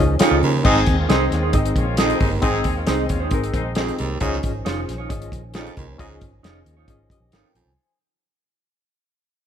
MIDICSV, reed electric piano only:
0, 0, Header, 1, 2, 480
1, 0, Start_track
1, 0, Key_signature, -4, "major"
1, 0, Tempo, 444774
1, 703, Time_signature, 4, 2, 24, 8
1, 10217, End_track
2, 0, Start_track
2, 0, Title_t, "Reed electric piano"
2, 0, Program_c, 0, 4
2, 0, Note_on_c, 0, 61, 83
2, 0, Note_on_c, 0, 63, 79
2, 0, Note_on_c, 0, 65, 76
2, 0, Note_on_c, 0, 68, 74
2, 0, Note_on_c, 0, 75, 92
2, 142, Note_off_c, 0, 61, 0
2, 145, Note_off_c, 0, 63, 0
2, 148, Note_off_c, 0, 65, 0
2, 152, Note_off_c, 0, 68, 0
2, 155, Note_off_c, 0, 75, 0
2, 214, Note_on_c, 0, 61, 86
2, 222, Note_on_c, 0, 63, 76
2, 223, Note_on_c, 0, 65, 82
2, 230, Note_on_c, 0, 68, 80
2, 233, Note_on_c, 0, 75, 97
2, 546, Note_off_c, 0, 61, 0
2, 550, Note_off_c, 0, 63, 0
2, 550, Note_off_c, 0, 65, 0
2, 554, Note_off_c, 0, 68, 0
2, 555, Note_off_c, 0, 75, 0
2, 692, Note_on_c, 0, 60, 101
2, 697, Note_on_c, 0, 63, 95
2, 704, Note_on_c, 0, 68, 99
2, 709, Note_on_c, 0, 75, 125
2, 1025, Note_off_c, 0, 60, 0
2, 1028, Note_off_c, 0, 63, 0
2, 1031, Note_off_c, 0, 68, 0
2, 1034, Note_off_c, 0, 75, 0
2, 1178, Note_on_c, 0, 60, 88
2, 1185, Note_on_c, 0, 63, 80
2, 1191, Note_on_c, 0, 68, 80
2, 1197, Note_on_c, 0, 75, 94
2, 1508, Note_off_c, 0, 60, 0
2, 1512, Note_off_c, 0, 63, 0
2, 1515, Note_off_c, 0, 68, 0
2, 1518, Note_off_c, 0, 75, 0
2, 1651, Note_on_c, 0, 60, 80
2, 1662, Note_on_c, 0, 63, 78
2, 1667, Note_on_c, 0, 68, 74
2, 1674, Note_on_c, 0, 75, 91
2, 1985, Note_off_c, 0, 60, 0
2, 1990, Note_off_c, 0, 63, 0
2, 1993, Note_off_c, 0, 68, 0
2, 1996, Note_off_c, 0, 75, 0
2, 2133, Note_on_c, 0, 60, 85
2, 2143, Note_on_c, 0, 63, 77
2, 2146, Note_on_c, 0, 68, 73
2, 2156, Note_on_c, 0, 75, 88
2, 2466, Note_off_c, 0, 60, 0
2, 2471, Note_off_c, 0, 63, 0
2, 2473, Note_off_c, 0, 68, 0
2, 2478, Note_off_c, 0, 75, 0
2, 2608, Note_on_c, 0, 60, 107
2, 2616, Note_on_c, 0, 63, 99
2, 2622, Note_on_c, 0, 68, 96
2, 2628, Note_on_c, 0, 75, 113
2, 2943, Note_off_c, 0, 60, 0
2, 2948, Note_off_c, 0, 63, 0
2, 2951, Note_off_c, 0, 68, 0
2, 2954, Note_off_c, 0, 75, 0
2, 3093, Note_on_c, 0, 60, 86
2, 3097, Note_on_c, 0, 63, 76
2, 3100, Note_on_c, 0, 68, 82
2, 3110, Note_on_c, 0, 75, 95
2, 3426, Note_off_c, 0, 60, 0
2, 3428, Note_off_c, 0, 63, 0
2, 3430, Note_off_c, 0, 68, 0
2, 3435, Note_off_c, 0, 75, 0
2, 3578, Note_on_c, 0, 60, 85
2, 3586, Note_on_c, 0, 63, 79
2, 3594, Note_on_c, 0, 68, 76
2, 3600, Note_on_c, 0, 70, 90
2, 3909, Note_off_c, 0, 60, 0
2, 3913, Note_off_c, 0, 63, 0
2, 3917, Note_off_c, 0, 68, 0
2, 3920, Note_off_c, 0, 70, 0
2, 4058, Note_on_c, 0, 60, 82
2, 4062, Note_on_c, 0, 63, 75
2, 4069, Note_on_c, 0, 68, 77
2, 4081, Note_on_c, 0, 75, 94
2, 4389, Note_off_c, 0, 60, 0
2, 4391, Note_off_c, 0, 63, 0
2, 4395, Note_off_c, 0, 68, 0
2, 4400, Note_off_c, 0, 75, 0
2, 4543, Note_on_c, 0, 61, 108
2, 4548, Note_on_c, 0, 65, 93
2, 4554, Note_on_c, 0, 68, 101
2, 4561, Note_on_c, 0, 75, 115
2, 4871, Note_off_c, 0, 61, 0
2, 4874, Note_off_c, 0, 65, 0
2, 4877, Note_off_c, 0, 68, 0
2, 4881, Note_off_c, 0, 75, 0
2, 5023, Note_on_c, 0, 61, 84
2, 5030, Note_on_c, 0, 65, 77
2, 5036, Note_on_c, 0, 68, 76
2, 5043, Note_on_c, 0, 72, 93
2, 5352, Note_off_c, 0, 61, 0
2, 5355, Note_off_c, 0, 65, 0
2, 5358, Note_off_c, 0, 68, 0
2, 5362, Note_off_c, 0, 72, 0
2, 5497, Note_on_c, 0, 61, 81
2, 5502, Note_on_c, 0, 65, 75
2, 5511, Note_on_c, 0, 68, 71
2, 5519, Note_on_c, 0, 75, 90
2, 5829, Note_off_c, 0, 61, 0
2, 5831, Note_off_c, 0, 65, 0
2, 5836, Note_off_c, 0, 68, 0
2, 5840, Note_off_c, 0, 75, 0
2, 5975, Note_on_c, 0, 61, 82
2, 5983, Note_on_c, 0, 65, 72
2, 5987, Note_on_c, 0, 68, 71
2, 5991, Note_on_c, 0, 75, 87
2, 6308, Note_off_c, 0, 61, 0
2, 6312, Note_off_c, 0, 65, 0
2, 6314, Note_off_c, 0, 68, 0
2, 6316, Note_off_c, 0, 75, 0
2, 6458, Note_on_c, 0, 61, 102
2, 6467, Note_on_c, 0, 65, 97
2, 6474, Note_on_c, 0, 68, 95
2, 6477, Note_on_c, 0, 75, 116
2, 6789, Note_off_c, 0, 61, 0
2, 6794, Note_off_c, 0, 65, 0
2, 6797, Note_off_c, 0, 68, 0
2, 6798, Note_off_c, 0, 75, 0
2, 6944, Note_on_c, 0, 61, 80
2, 6957, Note_on_c, 0, 65, 76
2, 6964, Note_on_c, 0, 68, 77
2, 6967, Note_on_c, 0, 75, 95
2, 7272, Note_off_c, 0, 61, 0
2, 7279, Note_off_c, 0, 65, 0
2, 7282, Note_off_c, 0, 68, 0
2, 7283, Note_off_c, 0, 75, 0
2, 7426, Note_on_c, 0, 61, 80
2, 7431, Note_on_c, 0, 65, 73
2, 7441, Note_on_c, 0, 68, 72
2, 7447, Note_on_c, 0, 75, 89
2, 7673, Note_off_c, 0, 68, 0
2, 7673, Note_off_c, 0, 75, 0
2, 7686, Note_on_c, 0, 75, 62
2, 7692, Note_on_c, 0, 67, 54
2, 7753, Note_off_c, 0, 61, 0
2, 7756, Note_off_c, 0, 65, 0
2, 7904, Note_off_c, 0, 75, 0
2, 7907, Note_off_c, 0, 67, 0
2, 7912, Note_on_c, 0, 79, 65
2, 7914, Note_on_c, 0, 70, 58
2, 8137, Note_off_c, 0, 79, 0
2, 8138, Note_off_c, 0, 70, 0
2, 8158, Note_on_c, 0, 80, 63
2, 8160, Note_on_c, 0, 72, 53
2, 8608, Note_off_c, 0, 80, 0
2, 8609, Note_off_c, 0, 72, 0
2, 10217, End_track
0, 0, End_of_file